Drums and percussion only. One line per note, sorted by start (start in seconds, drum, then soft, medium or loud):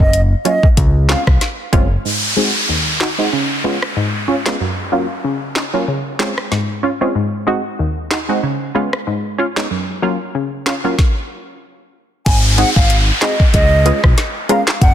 0.00 kick medium
0.13 closed hi-hat medium
0.45 closed hi-hat medium
0.63 kick loud
0.77 kick loud
0.77 closed hi-hat medium
1.09 snare loud
1.09 clap medium
1.09 closed hi-hat medium
1.27 kick medium
1.27 cross-stick loud
1.41 snare medium
1.41 closed hi-hat medium
1.73 kick medium
1.73 closed hi-hat medium
3.00 snare loud
3.00 clap medium
3.82 cross-stick medium
4.46 snare loud
4.46 clap medium
5.56 snare loud
5.56 clap medium
6.20 snare loud
6.20 clap medium
6.38 cross-stick medium
6.52 snare medium
8.11 snare loud
8.11 clap medium
8.93 cross-stick medium
9.57 snare loud
9.57 clap medium
10.66 snare loud
10.66 clap medium
10.99 kick loud
10.99 snare medium
12.26 kick loud
12.26 closed hi-hat medium
12.26 crash loud
12.58 closed hi-hat medium
12.76 kick loud
12.90 closed hi-hat medium
13.22 snare loud
13.22 clap medium
13.22 closed hi-hat medium
13.40 kick loud
13.54 kick loud
13.54 closed hi-hat medium
13.86 closed hi-hat medium
14.04 kick medium
14.04 cross-stick loud
14.18 snare medium
14.18 closed hi-hat medium
14.49 closed hi-hat medium
14.67 snare loud
14.67 clap medium
14.81 kick loud
14.81 closed hi-hat medium